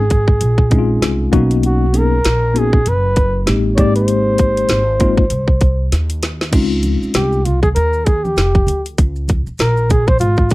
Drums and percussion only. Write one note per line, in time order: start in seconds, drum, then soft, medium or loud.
0.10 kick medium
0.10 closed hi-hat medium
0.28 kick medium
0.41 closed hi-hat medium
0.58 kick medium
0.71 kick medium
0.71 closed hi-hat medium
1.02 snare medium
1.02 closed hi-hat medium
1.33 kick loud
1.33 closed hi-hat medium
1.51 closed hi-hat soft
1.63 closed hi-hat medium
1.94 closed hi-hat medium
2.25 snare loud
2.25 closed hi-hat medium
2.56 closed hi-hat medium
2.73 kick loud
2.86 closed hi-hat medium
3.16 kick medium
3.16 closed hi-hat medium
3.47 snare medium
3.47 closed hi-hat medium
3.78 kick loud
3.78 closed hi-hat medium
3.96 closed hi-hat soft
4.08 closed hi-hat medium
4.38 kick medium
4.38 closed hi-hat medium
4.57 closed hi-hat soft
4.69 snare loud
4.69 closed hi-hat medium
5.00 kick medium
5.00 closed hi-hat medium
5.18 kick medium
5.30 closed hi-hat medium
5.48 kick medium
5.61 kick medium
5.61 closed hi-hat medium
5.92 snare medium
5.92 closed hi-hat medium
6.10 closed hi-hat medium
6.23 snare medium
6.23 closed hi-hat medium
6.41 snare medium
6.53 kick loud
6.53 closed hi-hat medium
6.53 crash medium
6.53 maracas medium
6.72 maracas soft
6.83 closed hi-hat medium
6.83 high conga soft
6.83 maracas soft
7.03 maracas soft
7.14 snare loud
7.14 closed hi-hat medium
7.14 maracas medium
7.32 maracas soft
7.45 closed hi-hat medium
7.45 low conga medium
7.45 maracas soft
7.63 kick medium
7.63 high conga soft
7.63 maracas soft
7.76 closed hi-hat medium
7.76 maracas medium
7.93 maracas soft
8.06 kick medium
8.06 closed hi-hat medium
8.06 maracas soft
8.25 high conga medium
8.25 maracas soft
8.37 snare medium
8.37 closed hi-hat medium
8.37 maracas medium
8.55 kick medium
8.55 high conga medium
8.55 maracas soft
8.67 closed hi-hat medium
8.67 low conga medium
8.67 maracas soft
8.85 closed hi-hat soft
8.85 maracas soft
8.98 kick loud
8.98 closed hi-hat medium
8.98 maracas medium
9.16 maracas soft
9.28 kick medium
9.28 closed hi-hat medium
9.28 high conga soft
9.28 maracas soft
9.47 maracas medium
9.58 snare loud
9.58 closed hi-hat medium
9.58 maracas medium
9.77 maracas soft
9.90 kick medium
9.90 closed hi-hat medium
9.90 low conga medium
9.90 maracas soft
10.07 kick loud
10.07 high conga soft
10.07 maracas soft
10.19 closed hi-hat medium
10.19 maracas medium
10.37 kick medium
10.37 maracas soft
10.49 kick medium
10.49 closed hi-hat medium
10.49 maracas soft